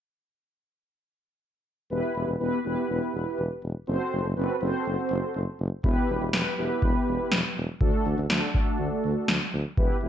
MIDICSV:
0, 0, Header, 1, 4, 480
1, 0, Start_track
1, 0, Key_signature, 1, "minor"
1, 0, Tempo, 491803
1, 1860, Time_signature, 4, 2, 24, 8
1, 9846, End_track
2, 0, Start_track
2, 0, Title_t, "Analog polysynth"
2, 0, Program_c, 0, 90
2, 1860, Note_on_c, 0, 59, 87
2, 1860, Note_on_c, 0, 64, 79
2, 1860, Note_on_c, 0, 67, 75
2, 1860, Note_on_c, 0, 71, 95
2, 2237, Note_off_c, 0, 59, 0
2, 2237, Note_off_c, 0, 64, 0
2, 2237, Note_off_c, 0, 67, 0
2, 2237, Note_off_c, 0, 71, 0
2, 2339, Note_on_c, 0, 59, 84
2, 2339, Note_on_c, 0, 64, 77
2, 2339, Note_on_c, 0, 67, 76
2, 2339, Note_on_c, 0, 71, 93
2, 2528, Note_off_c, 0, 59, 0
2, 2528, Note_off_c, 0, 64, 0
2, 2528, Note_off_c, 0, 67, 0
2, 2528, Note_off_c, 0, 71, 0
2, 2580, Note_on_c, 0, 59, 84
2, 2580, Note_on_c, 0, 64, 75
2, 2580, Note_on_c, 0, 67, 76
2, 2580, Note_on_c, 0, 71, 90
2, 3335, Note_off_c, 0, 59, 0
2, 3335, Note_off_c, 0, 64, 0
2, 3335, Note_off_c, 0, 67, 0
2, 3335, Note_off_c, 0, 71, 0
2, 3779, Note_on_c, 0, 66, 75
2, 3779, Note_on_c, 0, 69, 76
2, 3780, Note_on_c, 0, 60, 85
2, 3780, Note_on_c, 0, 72, 92
2, 4157, Note_off_c, 0, 60, 0
2, 4157, Note_off_c, 0, 66, 0
2, 4157, Note_off_c, 0, 69, 0
2, 4157, Note_off_c, 0, 72, 0
2, 4260, Note_on_c, 0, 60, 84
2, 4260, Note_on_c, 0, 66, 77
2, 4260, Note_on_c, 0, 69, 78
2, 4260, Note_on_c, 0, 71, 92
2, 4449, Note_off_c, 0, 60, 0
2, 4449, Note_off_c, 0, 66, 0
2, 4449, Note_off_c, 0, 69, 0
2, 4449, Note_off_c, 0, 71, 0
2, 4499, Note_on_c, 0, 66, 73
2, 4499, Note_on_c, 0, 69, 76
2, 4499, Note_on_c, 0, 72, 91
2, 4500, Note_on_c, 0, 60, 81
2, 5254, Note_off_c, 0, 60, 0
2, 5254, Note_off_c, 0, 66, 0
2, 5254, Note_off_c, 0, 69, 0
2, 5254, Note_off_c, 0, 72, 0
2, 5700, Note_on_c, 0, 59, 87
2, 5700, Note_on_c, 0, 64, 79
2, 5700, Note_on_c, 0, 67, 76
2, 5700, Note_on_c, 0, 71, 93
2, 6077, Note_off_c, 0, 59, 0
2, 6077, Note_off_c, 0, 64, 0
2, 6077, Note_off_c, 0, 67, 0
2, 6077, Note_off_c, 0, 71, 0
2, 6179, Note_on_c, 0, 71, 91
2, 6180, Note_on_c, 0, 59, 86
2, 6180, Note_on_c, 0, 64, 77
2, 6180, Note_on_c, 0, 67, 76
2, 6368, Note_off_c, 0, 71, 0
2, 6369, Note_off_c, 0, 59, 0
2, 6369, Note_off_c, 0, 64, 0
2, 6369, Note_off_c, 0, 67, 0
2, 6420, Note_on_c, 0, 59, 84
2, 6420, Note_on_c, 0, 64, 73
2, 6420, Note_on_c, 0, 67, 76
2, 6420, Note_on_c, 0, 71, 94
2, 7175, Note_off_c, 0, 59, 0
2, 7175, Note_off_c, 0, 64, 0
2, 7175, Note_off_c, 0, 67, 0
2, 7175, Note_off_c, 0, 71, 0
2, 7619, Note_on_c, 0, 66, 78
2, 7619, Note_on_c, 0, 69, 93
2, 7620, Note_on_c, 0, 57, 87
2, 7620, Note_on_c, 0, 62, 77
2, 7997, Note_off_c, 0, 57, 0
2, 7997, Note_off_c, 0, 62, 0
2, 7997, Note_off_c, 0, 66, 0
2, 7997, Note_off_c, 0, 69, 0
2, 8100, Note_on_c, 0, 57, 84
2, 8100, Note_on_c, 0, 62, 77
2, 8100, Note_on_c, 0, 66, 75
2, 8100, Note_on_c, 0, 69, 94
2, 8288, Note_off_c, 0, 57, 0
2, 8288, Note_off_c, 0, 66, 0
2, 8289, Note_off_c, 0, 62, 0
2, 8289, Note_off_c, 0, 69, 0
2, 8340, Note_on_c, 0, 57, 83
2, 8340, Note_on_c, 0, 62, 77
2, 8340, Note_on_c, 0, 66, 75
2, 8340, Note_on_c, 0, 69, 92
2, 9094, Note_off_c, 0, 62, 0
2, 9095, Note_off_c, 0, 57, 0
2, 9095, Note_off_c, 0, 66, 0
2, 9095, Note_off_c, 0, 69, 0
2, 9540, Note_on_c, 0, 59, 83
2, 9540, Note_on_c, 0, 64, 75
2, 9540, Note_on_c, 0, 67, 80
2, 9540, Note_on_c, 0, 71, 94
2, 9729, Note_off_c, 0, 59, 0
2, 9729, Note_off_c, 0, 64, 0
2, 9729, Note_off_c, 0, 67, 0
2, 9729, Note_off_c, 0, 71, 0
2, 9780, Note_on_c, 0, 59, 82
2, 9780, Note_on_c, 0, 64, 77
2, 9780, Note_on_c, 0, 67, 77
2, 9780, Note_on_c, 0, 71, 94
2, 9846, Note_off_c, 0, 59, 0
2, 9846, Note_off_c, 0, 64, 0
2, 9846, Note_off_c, 0, 67, 0
2, 9846, Note_off_c, 0, 71, 0
2, 9846, End_track
3, 0, Start_track
3, 0, Title_t, "Tuba"
3, 0, Program_c, 1, 58
3, 1861, Note_on_c, 1, 28, 95
3, 1955, Note_off_c, 1, 28, 0
3, 2099, Note_on_c, 1, 28, 92
3, 2194, Note_off_c, 1, 28, 0
3, 2221, Note_on_c, 1, 28, 90
3, 2315, Note_off_c, 1, 28, 0
3, 2341, Note_on_c, 1, 28, 88
3, 2436, Note_off_c, 1, 28, 0
3, 2580, Note_on_c, 1, 28, 87
3, 2675, Note_off_c, 1, 28, 0
3, 2820, Note_on_c, 1, 28, 93
3, 2915, Note_off_c, 1, 28, 0
3, 3060, Note_on_c, 1, 28, 90
3, 3155, Note_off_c, 1, 28, 0
3, 3300, Note_on_c, 1, 28, 84
3, 3395, Note_off_c, 1, 28, 0
3, 3541, Note_on_c, 1, 28, 84
3, 3635, Note_off_c, 1, 28, 0
3, 3781, Note_on_c, 1, 30, 100
3, 3875, Note_off_c, 1, 30, 0
3, 4021, Note_on_c, 1, 30, 93
3, 4115, Note_off_c, 1, 30, 0
3, 4141, Note_on_c, 1, 30, 92
3, 4235, Note_off_c, 1, 30, 0
3, 4261, Note_on_c, 1, 30, 103
3, 4356, Note_off_c, 1, 30, 0
3, 4501, Note_on_c, 1, 30, 95
3, 4595, Note_off_c, 1, 30, 0
3, 4741, Note_on_c, 1, 30, 90
3, 4835, Note_off_c, 1, 30, 0
3, 4981, Note_on_c, 1, 30, 94
3, 5075, Note_off_c, 1, 30, 0
3, 5219, Note_on_c, 1, 30, 91
3, 5314, Note_off_c, 1, 30, 0
3, 5460, Note_on_c, 1, 30, 89
3, 5555, Note_off_c, 1, 30, 0
3, 5700, Note_on_c, 1, 28, 100
3, 5795, Note_off_c, 1, 28, 0
3, 5939, Note_on_c, 1, 28, 94
3, 6034, Note_off_c, 1, 28, 0
3, 6059, Note_on_c, 1, 28, 94
3, 6154, Note_off_c, 1, 28, 0
3, 6179, Note_on_c, 1, 28, 96
3, 6275, Note_off_c, 1, 28, 0
3, 6419, Note_on_c, 1, 28, 92
3, 6514, Note_off_c, 1, 28, 0
3, 6660, Note_on_c, 1, 28, 91
3, 6755, Note_off_c, 1, 28, 0
3, 6900, Note_on_c, 1, 28, 88
3, 6995, Note_off_c, 1, 28, 0
3, 7140, Note_on_c, 1, 28, 93
3, 7235, Note_off_c, 1, 28, 0
3, 7380, Note_on_c, 1, 28, 93
3, 7475, Note_off_c, 1, 28, 0
3, 7619, Note_on_c, 1, 38, 93
3, 7715, Note_off_c, 1, 38, 0
3, 7861, Note_on_c, 1, 38, 92
3, 7955, Note_off_c, 1, 38, 0
3, 7981, Note_on_c, 1, 38, 95
3, 8075, Note_off_c, 1, 38, 0
3, 8100, Note_on_c, 1, 38, 92
3, 8195, Note_off_c, 1, 38, 0
3, 8580, Note_on_c, 1, 38, 95
3, 8675, Note_off_c, 1, 38, 0
3, 8821, Note_on_c, 1, 38, 92
3, 8915, Note_off_c, 1, 38, 0
3, 9061, Note_on_c, 1, 38, 87
3, 9156, Note_off_c, 1, 38, 0
3, 9301, Note_on_c, 1, 38, 94
3, 9395, Note_off_c, 1, 38, 0
3, 9540, Note_on_c, 1, 28, 97
3, 9635, Note_off_c, 1, 28, 0
3, 9779, Note_on_c, 1, 28, 96
3, 9846, Note_off_c, 1, 28, 0
3, 9846, End_track
4, 0, Start_track
4, 0, Title_t, "Drums"
4, 5700, Note_on_c, 9, 36, 106
4, 5797, Note_off_c, 9, 36, 0
4, 6181, Note_on_c, 9, 38, 100
4, 6279, Note_off_c, 9, 38, 0
4, 6660, Note_on_c, 9, 36, 88
4, 6757, Note_off_c, 9, 36, 0
4, 7141, Note_on_c, 9, 38, 103
4, 7238, Note_off_c, 9, 38, 0
4, 7620, Note_on_c, 9, 36, 105
4, 7717, Note_off_c, 9, 36, 0
4, 8100, Note_on_c, 9, 38, 104
4, 8197, Note_off_c, 9, 38, 0
4, 8340, Note_on_c, 9, 36, 85
4, 8438, Note_off_c, 9, 36, 0
4, 9060, Note_on_c, 9, 38, 102
4, 9158, Note_off_c, 9, 38, 0
4, 9540, Note_on_c, 9, 36, 105
4, 9638, Note_off_c, 9, 36, 0
4, 9846, End_track
0, 0, End_of_file